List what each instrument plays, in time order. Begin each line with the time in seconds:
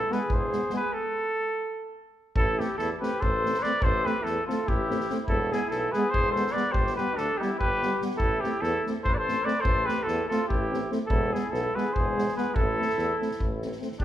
Already playing: flugelhorn E4, trumpet A4
0.10 euphonium G#3, french horn B3, flugelhorn G#4, trumpet B4, snare
0.28 tuba E1, kick
0.34 flugelhorn G#4, trumpet C5
0.52 euphonium G#3, french horn B3, snare
0.70 euphonium G#3, french horn B3, flugelhorn G#4, snare
0.76 trumpet B4
0.93 trumpet A4
2.36 tuba A1, flugelhorn E4, trumpet A4, kick
2.59 euphonium A3, french horn C4, flugelhorn E4, trumpet G4, snare
2.78 tuba E2, flugelhorn E4, trumpet A4, snare
3.00 euphonium A3, french horn C4, flugelhorn G4, trumpet B4, snare
3.20 tuba A1, flugelhorn A4, trumpet C5, kick
3.44 euphonium A3, french horn C4, snare
3.54 snare
3.59 flugelhorn B4, trumpet D5, snare
3.64 euphonium A3, french horn C4
3.81 tuba A1, flugelhorn A4, trumpet C5, kick
4.05 euphonium A3, french horn C4, flugelhorn G4, trumpet B4, snare
4.21 tuba E2, flugelhorn E4, trumpet A4, snare
4.46 euphonium A3, french horn C4, flugelhorn F4, trumpet A4, snare
4.66 tuba A1, flugelhorn E4, trumpet G4, kick
4.90 euphonium A3, french horn C4, snare
5.00 snare
5.09 euphonium A3, french horn C4, snare
5.25 tuba E1, flugelhorn E4, trumpet A4, kick
5.49 euphonium G#3, french horn B3, flugelhorn E4, trumpet G#4, snare
5.66 flugelhorn E4, trumpet A4
5.71 tuba B1, snare
5.92 euphonium G#3, flugelhorn G#4, trumpet B4, snare
5.96 french horn B3
6.10 tuba E1, flugelhorn G#4, trumpet C5
6.14 kick
6.30 flugelhorn A4, trumpet C5
6.36 euphonium G#3, french horn B3, snare
6.46 snare
6.51 flugelhorn B4, trumpet D5
6.56 euphonium G#3, french horn B3, snare
6.72 tuba G1, flugelhorn G4, trumpet C5, kick
6.87 snare
6.96 euphonium G3, french horn B3, flugelhorn G4, trumpet B4, snare
7.14 tuba D2, flugelhorn D4, trumpet A4, snare
7.38 flugelhorn E4, trumpet G4
7.42 euphonium G3, french horn B3, snare
7.58 tuba G1, flugelhorn G4, trumpet B4, kick
7.82 euphonium G3, french horn B3, snare
8.01 euphonium G3, french horn B3, snare
8.11 snare
8.16 tuba A1, flugelhorn E4, trumpet A4, kick
8.41 euphonium A3, french horn C4, flugelhorn E4, trumpet G4, snare
8.60 tuba E2, flugelhorn E4, trumpet A4, snare
8.86 euphonium A3, french horn C4, snare
9.02 tuba A1, flugelhorn A4, trumpet C5, kick
9.09 flugelhorn B4
9.14 flugelhorn A4, trumpet C5 D5
9.28 euphonium A3, french horn C4, snare
9.43 euphonium A3, french horn C4, flugelhorn B4, trumpet D5
9.48 snare
9.60 tuba A1, flugelhorn A4, trumpet C5
9.65 kick
9.85 euphonium A3, french horn C4, flugelhorn G4, trumpet B4, snare
10.03 tuba E2, flugelhorn E4, trumpet A4
10.08 snare
10.28 euphonium A3, french horn C4, flugelhorn F4, trumpet A4, snare
10.48 tuba A1, flugelhorn E4, trumpet G4, kick
10.72 euphonium A3, french horn C4, snare
10.91 euphonium A3, french horn C4, snare
11.07 tuba E1, flugelhorn E4, trumpet A4, kick
11.33 euphonium G#3, french horn B3, flugelhorn E4, trumpet G#4, snare
11.50 tuba B1, flugelhorn E4, trumpet A4, snare
11.75 euphonium G#3, french horn B3, flugelhorn G#4, trumpet B4, snare
11.93 tuba E1, flugelhorn G#4, trumpet C5, kick
12.17 euphonium G#3, french horn B3, snare
12.28 snare
12.36 euphonium G#3, french horn B3, flugelhorn G#4, trumpet B4, snare
12.55 tuba A1, flugelhorn E4, trumpet A4, kick
12.79 euphonium A3, french horn C4, snare
12.89 snare
12.97 tuba E2, snare
13.21 euphonium A3, french horn C4, snare
13.31 snare
13.40 tuba A1, kick
13.62 euphonium A3, french horn C4, snare
13.72 snare
13.81 euphonium A3, french horn C4, snare
13.92 snare
13.99 tuba G1, euphonium G3, french horn B3, flugelhorn D4, trumpet G4, kick